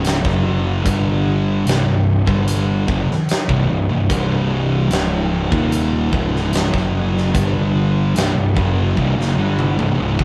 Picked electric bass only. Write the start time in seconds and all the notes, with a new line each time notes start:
Already playing: C#1
0.25 F#1
0.86 G1
1.66 C1
1.86 C1
2.28 G1
2.88 F#1
3.49 C1
3.69 C1
3.90 C1
4.10 C1
4.91 C#1
5.52 D#1
6.13 C#1
6.74 F#1
7.35 G1
8.15 C1
8.36 C1
8.56 F#1
8.97 C1
9.17 F#1
9.37 G1
9.78 C1
9.98 C#1
10.19 C1